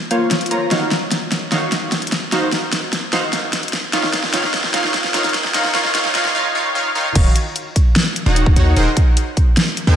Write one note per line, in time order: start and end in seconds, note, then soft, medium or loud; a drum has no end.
0.11 0.49 A#3 medium
0.11 0.49 F4 medium
0.11 0.49 C5 medium
0.11 0.49 C#5 medium
0.11 0.49 F5 loud
0.11 closed hi-hat medium
0.31 snare medium
0.31 closed hi-hat medium
0.41 closed hi-hat soft
0.46 closed hi-hat medium
0.51 0.68 A#3 medium
0.51 0.68 F4 medium
0.51 0.68 C5 medium
0.51 0.68 C#5 medium
0.51 0.68 A#5 medium
0.51 closed hi-hat medium
0.71 0.84 D#3 medium
0.71 0.84 D#4 medium
0.71 0.84 F#4 medium
0.71 0.84 C#5 medium
0.71 0.84 F5 loud
0.71 snare medium
0.71 closed hi-hat medium
0.91 snare medium
0.91 closed hi-hat medium
1.11 snare medium
1.11 closed hi-hat medium
1.32 snare medium
1.32 closed hi-hat medium
1.52 1.65 D#3 medium
1.52 1.65 D#4 medium
1.52 1.65 F#4 medium
1.52 1.65 C#5 medium
1.52 1.65 F5 loud
1.52 snare medium
1.52 closed hi-hat medium
1.72 snare medium
1.72 closed hi-hat medium
1.92 snare medium
1.92 closed hi-hat medium
2.02 closed hi-hat soft
2.07 closed hi-hat medium
2.12 snare medium
2.12 closed hi-hat medium
2.32 2.45 D#3 medium
2.32 2.45 D#4 medium
2.32 2.45 F#4 medium
2.32 2.45 C5 medium
2.32 2.45 F5 loud
2.32 snare medium
2.32 closed hi-hat medium
2.52 snare medium
2.52 closed hi-hat medium
2.72 snare medium
2.72 closed hi-hat medium
2.93 snare medium
2.93 closed hi-hat medium
3.13 3.26 D#3 medium
3.13 3.26 D#4 medium
3.13 3.26 F#4 medium
3.13 3.26 C5 medium
3.13 3.26 F5 loud
3.13 snare medium
3.13 closed hi-hat medium
3.33 snare medium
3.33 closed hi-hat medium
3.53 snare medium
3.53 closed hi-hat medium
3.63 closed hi-hat soft
3.68 closed hi-hat medium
3.73 snare medium
3.73 closed hi-hat medium
3.93 4.06 D#3 loud
3.93 4.06 D#4 medium
3.93 4.06 F4 medium
3.93 4.06 C#5 medium
3.93 4.06 F5 loud
3.93 snare medium
3.93 closed hi-hat medium
4.03 snare medium
4.13 snare loud
4.13 closed hi-hat medium
4.23 snare medium
4.34 4.47 D#3 loud
4.34 4.47 D#4 medium
4.34 4.47 F4 medium
4.34 4.47 C#5 medium
4.34 4.47 F5 loud
4.34 snare loud
4.34 closed hi-hat medium
4.44 snare medium
4.54 snare medium
4.54 closed hi-hat medium
4.64 snare medium
4.74 4.87 D#3 loud
4.74 4.87 D#4 medium
4.74 4.87 F4 medium
4.74 4.87 C#5 medium
4.74 4.87 F5 loud
4.74 snare medium
4.74 closed hi-hat medium
4.84 snare medium
4.94 snare loud
4.94 closed hi-hat medium
5.04 snare medium
5.14 5.27 D#3 loud
5.14 5.27 D#4 medium
5.14 5.27 F4 medium
5.14 5.27 C#5 medium
5.14 5.27 F5 loud
5.14 snare loud
5.14 closed hi-hat medium
5.24 snare medium
5.24 closed hi-hat soft
5.29 closed hi-hat medium
5.34 snare loud
5.34 closed hi-hat medium
5.44 snare medium
5.54 5.67 D#3 loud
5.54 5.67 D#4 loud
5.54 5.67 F4 loud
5.54 5.67 C#5 medium
5.54 5.67 F5 loud
5.54 snare loud
5.54 closed hi-hat medium
5.64 snare medium
5.74 5.88 D#3 loud
5.74 5.88 D#4 medium
5.74 5.88 F4 medium
5.74 5.88 C#5 medium
5.74 5.88 F5 loud
5.74 snare loud
5.74 closed hi-hat medium
5.85 snare medium
5.95 6.08 D#3 loud
5.95 6.08 D#4 medium
5.95 6.08 F4 loud
5.95 6.08 C#5 loud
5.95 6.08 F5 loud
5.95 snare loud
5.95 closed hi-hat medium
6.05 snare medium
6.15 6.28 D#3 loud
6.15 6.28 D#4 loud
6.15 6.28 F4 medium
6.15 6.28 C#5 medium
6.15 6.28 F5 loud
6.15 snare loud
6.15 closed hi-hat medium
6.25 snare medium
6.35 6.48 D#3 loud
6.35 6.48 D#4 medium
6.35 6.48 F4 loud
6.35 6.48 C#5 medium
6.35 6.48 F5 loud
6.55 6.68 D#3 loud
6.55 6.68 D#4 medium
6.55 6.68 F4 medium
6.55 6.68 C#5 loud
6.55 6.68 F5 loud
6.75 6.88 D#3 loud
6.75 6.88 D#4 loud
6.75 6.88 F4 loud
6.75 6.88 C#5 medium
6.75 6.88 F5 loud
6.95 7.08 D#3 loud
6.95 7.08 D#4 medium
6.95 7.08 F4 loud
6.95 7.08 C#5 loud
6.95 7.08 F5 loud
7.15 7.27 D#1 loud
7.15 7.29 D#3 loud
7.15 7.29 D#4 loud
7.15 7.29 F#4 medium
7.15 7.29 C#5 medium
7.15 7.29 F5 loud
7.15 kick loud
7.15 closed hi-hat medium
7.15 crash loud
7.36 closed hi-hat medium
7.56 closed hi-hat medium
7.76 kick medium
7.76 closed hi-hat medium
7.96 snare loud
7.96 closed hi-hat medium
8.16 closed hi-hat medium
8.26 8.54 D#1 medium
8.26 8.54 D#3 medium
8.26 8.54 D#4 medium
8.26 8.54 F#4 medium
8.26 8.54 C#5 medium
8.26 8.54 F#5 loud
8.36 closed hi-hat medium
8.46 kick loud
8.56 8.74 D#2 medium
8.56 8.74 D#3 medium
8.56 8.74 D#4 medium
8.56 8.74 F#4 medium
8.56 8.74 C#5 medium
8.56 8.74 F#5 loud
8.56 closed hi-hat medium
8.76 8.88 D#1 loud
8.76 8.90 D#3 loud
8.76 8.90 D#4 medium
8.76 8.90 G#4 medium
8.76 8.90 A#4 medium
8.76 8.90 C5 medium
8.76 8.90 F#5 loud
8.76 closed hi-hat medium
8.97 kick loud
8.97 closed hi-hat medium
9.17 closed hi-hat medium
9.37 kick medium
9.37 closed hi-hat medium
9.57 snare loud
9.57 closed hi-hat medium
9.77 closed hi-hat medium
9.87 9.96 D#2 loud
9.87 9.96 D#3 medium
9.87 9.96 D#4 medium
9.87 9.96 G#4 medium
9.87 9.96 A#4 medium
9.87 9.96 C5 medium
9.87 9.96 G#5 loud